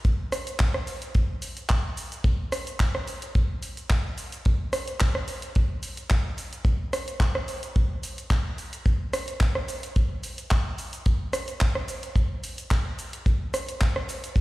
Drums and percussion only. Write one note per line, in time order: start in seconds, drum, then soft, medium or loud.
0.05 kick loud
0.05 closed hi-hat medium
0.05 shaker soft
0.32 cross-stick medium
0.32 open hi-hat loud
0.32 shaker medium
0.47 closed hi-hat medium
0.47 shaker soft
0.60 kick loud
0.60 clap loud
0.60 closed hi-hat medium
0.60 shaker soft
0.74 cross-stick medium
0.87 open hi-hat medium
0.87 shaker medium
1.02 closed hi-hat medium
1.02 shaker soft
1.15 kick loud
1.15 closed hi-hat soft
1.15 shaker soft
1.42 open hi-hat loud
1.42 shaker medium
1.57 closed hi-hat medium
1.57 shaker soft
1.69 kick loud
1.69 clap loud
1.69 closed hi-hat medium
1.69 shaker soft
1.97 open hi-hat loud
1.97 shaker medium
2.12 closed hi-hat medium
2.12 shaker soft
2.24 kick loud
2.24 closed hi-hat medium
2.24 shaker soft
2.52 cross-stick medium
2.52 open hi-hat loud
2.52 shaker medium
2.67 closed hi-hat medium
2.67 shaker soft
2.80 kick loud
2.80 clap loud
2.80 closed hi-hat medium
2.95 cross-stick medium
3.08 open hi-hat medium
3.08 shaker medium
3.22 closed hi-hat medium
3.22 shaker soft
3.35 kick loud
3.35 closed hi-hat soft
3.35 shaker soft
3.62 open hi-hat loud
3.62 shaker medium
3.77 closed hi-hat medium
3.77 shaker soft
3.90 kick loud
3.90 clap loud
3.90 closed hi-hat medium
3.90 shaker soft
4.18 open hi-hat medium
4.18 shaker medium
4.32 closed hi-hat medium
4.32 shaker soft
4.45 kick loud
4.45 closed hi-hat medium
4.45 shaker soft
4.73 cross-stick medium
4.73 open hi-hat loud
4.73 shaker medium
4.88 closed hi-hat medium
4.88 shaker soft
5.00 kick loud
5.00 clap loud
5.00 closed hi-hat medium
5.00 shaker soft
5.15 cross-stick medium
5.28 open hi-hat loud
5.28 shaker medium
5.42 closed hi-hat medium
5.42 shaker soft
5.55 kick loud
5.55 closed hi-hat medium
5.55 shaker soft
5.83 open hi-hat loud
5.83 shaker medium
5.97 closed hi-hat medium
5.97 shaker soft
6.10 kick loud
6.10 clap loud
6.10 closed hi-hat soft
6.10 shaker soft
6.38 open hi-hat loud
6.38 shaker medium
6.53 closed hi-hat medium
6.53 shaker soft
6.65 kick loud
6.65 closed hi-hat soft
6.65 shaker soft
6.93 cross-stick medium
6.93 open hi-hat loud
6.93 shaker medium
7.08 closed hi-hat medium
7.08 shaker soft
7.20 kick loud
7.20 clap loud
7.20 closed hi-hat medium
7.20 shaker soft
7.35 cross-stick medium
7.48 open hi-hat medium
7.48 shaker medium
7.63 closed hi-hat medium
7.63 shaker soft
7.76 kick loud
7.76 closed hi-hat soft
7.76 shaker soft
8.03 open hi-hat loud
8.03 shaker medium
8.18 closed hi-hat medium
8.18 shaker soft
8.30 kick loud
8.30 clap loud
8.30 closed hi-hat medium
8.30 shaker soft
8.58 open hi-hat medium
8.58 shaker medium
8.73 closed hi-hat medium
8.73 shaker soft
8.86 kick loud
8.86 closed hi-hat soft
8.86 shaker soft
9.13 cross-stick medium
9.13 open hi-hat loud
9.13 shaker medium
9.28 closed hi-hat medium
9.28 shaker soft
9.41 kick loud
9.41 clap loud
9.41 closed hi-hat medium
9.41 shaker soft
9.55 cross-stick medium
9.68 open hi-hat medium
9.68 shaker medium
9.83 closed hi-hat medium
9.83 shaker soft
9.96 kick loud
9.96 closed hi-hat soft
9.96 shaker soft
10.23 open hi-hat loud
10.23 shaker medium
10.38 closed hi-hat medium
10.38 shaker soft
10.51 kick loud
10.51 clap loud
10.51 closed hi-hat soft
10.51 shaker soft
10.78 open hi-hat medium
10.78 shaker medium
10.93 closed hi-hat medium
10.93 shaker soft
11.06 kick loud
11.06 closed hi-hat medium
11.06 shaker soft
11.33 cross-stick medium
11.33 open hi-hat loud
11.33 shaker medium
11.48 closed hi-hat medium
11.48 shaker soft
11.61 kick loud
11.61 clap loud
11.61 closed hi-hat medium
11.61 shaker soft
11.75 cross-stick medium
11.88 open hi-hat medium
11.88 shaker medium
12.03 closed hi-hat medium
12.03 shaker soft
12.16 kick loud
12.16 closed hi-hat medium
12.16 shaker soft
12.44 open hi-hat loud
12.44 shaker medium
12.58 closed hi-hat medium
12.58 shaker soft
12.71 kick loud
12.71 clap loud
12.71 closed hi-hat medium
12.71 shaker soft
12.99 open hi-hat medium
12.99 shaker medium
13.13 closed hi-hat medium
13.13 shaker soft
13.26 kick loud
13.26 closed hi-hat medium
13.26 shaker soft
13.54 cross-stick medium
13.54 open hi-hat loud
13.54 shaker medium
13.69 closed hi-hat medium
13.69 shaker soft
13.81 kick loud
13.81 clap loud
13.81 closed hi-hat medium
13.81 shaker soft
13.96 cross-stick medium
14.09 open hi-hat medium
14.09 shaker medium
14.24 closed hi-hat medium
14.24 shaker soft
14.36 kick loud
14.36 closed hi-hat medium
14.36 shaker soft